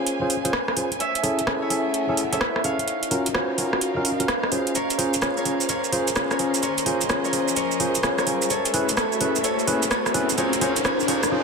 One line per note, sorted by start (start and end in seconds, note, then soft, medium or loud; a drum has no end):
0.00 0.97 A#3 medium
0.00 0.18 C#4 medium
0.00 1.77 C#4 medium
0.00 4.71 C#4 medium
0.00 0.18 F4 medium
0.00 0.18 G#4 medium
0.00 0.69 A#4 medium
0.00 1.00 A#4 medium
0.00 0.18 C5 medium
0.00 0.87 C5 medium
0.00 0.97 C5 medium
0.00 0.68 D#5 medium
0.00 0.97 F5 medium
0.00 2.84 G#5 medium
0.00 3.64 G#5 medium
0.00 1.00 C6 medium
0.07 closed hi-hat medium
0.21 0.35 C#4 medium
0.21 0.35 F4 medium
0.21 0.35 G#4 medium
0.21 0.35 C5 loud
0.30 open hi-hat loud
0.45 0.52 C#4 loud
0.45 0.52 F4 medium
0.45 0.52 G#4 medium
0.45 0.52 C5 loud
0.45 closed hi-hat medium
0.53 cross-stick loud
0.68 cross-stick medium
0.77 0.89 C#4 medium
0.77 0.89 F4 medium
0.77 0.89 G#4 medium
0.77 0.89 C5 medium
0.77 open hi-hat medium
0.92 closed hi-hat soft
1.00 2.86 A3 medium
1.00 2.88 E4 medium
1.00 1.62 C#5 medium
1.00 2.86 E5 medium
1.00 1.62 E5 medium
1.00 closed hi-hat medium
1.15 2.88 A4 medium
1.15 2.88 F#5 medium
1.15 closed hi-hat medium
1.23 1.39 C#4 loud
1.23 1.39 E4 medium
1.23 1.39 G#4 medium
1.23 1.39 A4 loud
1.23 open hi-hat loud
1.39 closed hi-hat medium
1.47 1.68 C#4 medium
1.47 1.68 E4 medium
1.47 1.68 G#4 medium
1.47 1.68 A4 loud
1.47 cross-stick loud
1.62 2.32 C#5 medium
1.62 2.33 E5 medium
1.70 2.05 C#4 medium
1.70 2.05 E4 medium
1.70 2.05 G#4 medium
1.70 2.05 A4 medium
1.70 open hi-hat medium
1.94 closed hi-hat medium
2.09 2.22 C#4 medium
2.09 2.22 E4 medium
2.09 2.22 G#4 medium
2.09 2.22 A4 loud
2.17 open hi-hat loud
2.32 2.39 C#4 medium
2.32 2.39 E4 medium
2.32 2.39 G#4 medium
2.32 2.39 A4 loud
2.32 2.63 C#5 medium
2.32 2.71 E5 medium
2.32 closed hi-hat medium
2.41 cross-stick loud
2.56 cross-stick medium
2.64 2.77 C#4 medium
2.64 2.77 E4 medium
2.64 2.77 G#4 medium
2.64 2.77 A4 medium
2.64 4.55 C#5 medium
2.64 4.31 F5 medium
2.64 open hi-hat medium
2.79 closed hi-hat soft
2.88 9.11 C#4 medium
2.88 4.73 D#4 medium
2.88 4.73 A#4 medium
2.88 6.59 F5 medium
2.88 closed hi-hat medium
2.95 4.75 F#4 medium
3.03 closed hi-hat medium
3.11 3.27 C#4 loud
3.11 3.27 F4 medium
3.11 3.27 F#4 medium
3.11 3.27 A#4 loud
3.11 open hi-hat loud
3.26 closed hi-hat medium
3.34 3.56 C#4 loud
3.34 3.56 F4 medium
3.34 3.56 F#4 medium
3.34 3.56 C5 loud
3.34 cross-stick loud
3.39 5.58 D#5 loud
3.57 3.93 C#4 medium
3.57 3.93 F4 medium
3.57 3.93 F#4 medium
3.57 3.93 A#4 medium
3.57 5.86 F5 medium
3.57 open hi-hat medium
3.73 cross-stick medium
3.81 closed hi-hat medium
3.96 4.10 C#4 medium
3.96 4.10 F4 medium
3.96 4.10 F#4 medium
3.96 4.10 A#4 medium
4.05 open hi-hat loud
4.20 4.27 C#4 medium
4.20 4.27 F4 medium
4.20 4.27 F#4 medium
4.20 4.27 A#4 medium
4.20 closed hi-hat medium
4.28 cross-stick loud
4.28 closed hi-hat soft
4.43 cross-stick medium
4.52 4.75 C#4 medium
4.52 4.75 F4 medium
4.52 4.75 G#4 medium
4.52 4.75 C5 medium
4.52 open hi-hat medium
4.67 closed hi-hat soft
4.75 8.46 A#3 medium
4.75 10.34 G#4 medium
4.75 5.37 A#4 medium
4.75 8.46 C5 medium
4.75 11.27 C#5 medium
4.75 5.37 C#5 medium
4.75 closed hi-hat medium
4.75 riser medium
4.75 shaker medium
4.90 closed hi-hat medium
4.90 shaker soft
4.98 5.14 C#4 medium
4.98 5.14 F4 medium
4.98 5.14 G#4 medium
4.98 5.14 C5 loud
4.98 open hi-hat loud
5.10 8.50 A#4 medium
5.10 closed hi-hat medium
5.10 shaker medium
5.22 5.44 C#4 medium
5.22 5.44 F4 medium
5.22 5.44 G#4 medium
5.22 5.44 C#5 loud
5.22 cross-stick loud
5.22 shaker medium
5.26 8.50 C6 medium
5.30 11.14 G#5 medium
5.37 5.68 A#4 medium
5.37 5.69 C#5 medium
5.37 shaker soft
5.45 5.68 C#4 medium
5.45 5.68 F4 medium
5.45 5.68 G#4 medium
5.45 5.68 C5 medium
5.45 open hi-hat medium
5.61 shaker medium
5.69 6.30 A#4 medium
5.69 6.31 C#5 medium
5.69 closed hi-hat medium
5.69 shaker medium
5.84 shaker soft
5.92 6.08 C#4 medium
5.92 6.08 F4 medium
5.92 6.08 G#4 medium
5.92 6.08 C5 loud
5.92 open hi-hat loud
6.08 closed hi-hat medium
6.08 shaker medium
6.16 6.37 C#4 medium
6.16 6.37 F4 medium
6.16 6.37 G#4 medium
6.16 6.37 C#5 loud
6.16 cross-stick loud
6.16 shaker medium
6.31 6.62 A#4 medium
6.31 6.63 C#5 medium
6.31 cross-stick medium
6.31 shaker soft
6.39 6.61 C#4 medium
6.39 6.61 F4 medium
6.39 6.61 G#4 medium
6.39 6.61 C5 medium
6.39 open hi-hat medium
6.54 closed hi-hat soft
6.54 shaker medium
6.63 7.24 A#4 medium
6.63 7.25 C#5 medium
6.63 8.48 D#5 medium
6.63 closed hi-hat medium
6.63 shaker medium
6.78 closed hi-hat medium
6.78 shaker soft
6.86 7.02 C#4 loud
6.86 7.02 F4 medium
6.86 7.02 G#4 medium
6.86 7.02 C5 loud
6.86 open hi-hat loud
7.01 closed hi-hat medium
7.01 shaker medium
7.09 7.31 C#4 medium
7.09 7.31 F4 medium
7.09 7.31 G#4 medium
7.09 7.31 C#5 loud
7.09 cross-stick loud
7.09 shaker medium
7.24 7.56 A#4 medium
7.24 7.56 C#5 medium
7.24 shaker soft
7.33 7.55 C#4 medium
7.33 7.55 F4 medium
7.33 7.55 G#4 medium
7.33 7.55 C5 medium
7.33 open hi-hat medium
7.48 shaker medium
7.56 8.18 A#4 medium
7.56 8.18 C#5 medium
7.56 closed hi-hat medium
7.56 shaker medium
7.72 shaker soft
7.80 7.96 C#4 medium
7.80 7.96 F4 medium
7.80 7.96 G#4 medium
7.80 7.96 C5 loud
7.80 open hi-hat loud
7.95 closed hi-hat medium
7.95 shaker medium
8.03 8.25 C#4 medium
8.03 8.25 F4 medium
8.03 8.25 G#4 medium
8.03 8.25 C#5 loud
8.03 cross-stick loud
8.03 shaker medium
8.18 8.56 A#4 medium
8.18 8.50 C#5 medium
8.18 cross-stick medium
8.18 shaker soft
8.27 8.49 C#4 medium
8.27 8.49 F4 medium
8.27 8.49 G#4 medium
8.27 8.49 C5 medium
8.27 open hi-hat medium
8.42 closed hi-hat soft
8.42 shaker medium
8.50 11.32 F#4 medium
8.50 8.96 A4 medium
8.50 10.36 A4 medium
8.50 8.97 C#5 loud
8.50 10.36 E5 medium
8.50 closed hi-hat medium
8.50 shaker medium
8.59 10.38 E5 medium
8.64 10.38 A3 medium
8.64 closed hi-hat medium
8.64 shaker soft
8.74 8.89 C#4 loud
8.74 8.89 E4 medium
8.74 8.89 G#4 medium
8.74 8.89 B4 loud
8.74 open hi-hat loud
8.89 closed hi-hat medium
8.89 shaker medium
8.97 9.43 A4 medium
8.97 9.44 C#5 loud
8.97 cross-stick loud
8.97 shaker medium
9.12 shaker soft
9.21 9.36 C#4 medium
9.21 9.36 E4 medium
9.21 9.36 G#4 medium
9.21 9.36 B4 loud
9.21 open hi-hat loud
9.36 shaker medium
9.44 9.90 A4 medium
9.44 9.91 C#5 loud
9.44 closed hi-hat medium
9.44 shaker medium
9.59 shaker soft
9.67 9.83 C#4 loud
9.67 9.83 E4 loud
9.67 9.83 G#4 medium
9.67 9.83 B4 loud
9.67 open hi-hat loud
9.83 closed hi-hat medium
9.83 shaker medium
9.90 10.44 A4 medium
9.90 10.38 C#5 loud
9.90 cross-stick loud
9.90 shaker medium
10.06 cross-stick medium
10.06 shaker soft
10.14 10.30 C#4 loud
10.14 10.30 E4 loud
10.14 10.30 G#4 medium
10.14 10.30 B4 loud
10.14 open hi-hat medium
10.30 closed hi-hat soft
10.30 shaker medium
10.38 10.53 C#4 medium
10.38 11.31 D#4 medium
10.38 10.53 F4 medium
10.38 11.31 F#4 medium
10.38 10.53 G#4 medium
10.38 11.30 A#4 medium
10.38 10.61 A#4 medium
10.38 10.53 C5 loud
10.38 10.61 C#5 loud
10.38 11.31 F5 medium
10.38 closed hi-hat medium
10.38 shaker medium
10.53 closed hi-hat medium
10.53 shaker soft
10.61 10.77 C#4 loud
10.61 10.77 F4 medium
10.61 10.77 G#4 loud
10.61 10.84 A#4 medium
10.61 10.77 C5 loud
10.61 10.85 C#5 loud
10.61 open hi-hat loud
10.76 closed hi-hat medium
10.76 shaker medium
10.85 11.00 C#4 loud
10.85 11.00 F4 medium
10.85 11.00 G#4 medium
10.85 11.08 A#4 medium
10.85 11.00 C5 loud
10.85 11.08 C#5 loud
10.85 cross-stick loud
10.85 shaker soft
11.00 shaker soft
11.08 11.24 C#4 medium
11.08 11.24 F4 medium
11.08 11.24 G#4 medium
11.08 11.43 A#4 medium
11.08 11.24 C5 loud
11.08 11.43 C#5 loud
11.08 open hi-hat loud
11.23 cross-stick medium
11.23 shaker medium
11.32 11.43 C#4 medium
11.32 11.43 F4 medium
11.32 11.43 G#4 medium
11.32 11.43 C5 loud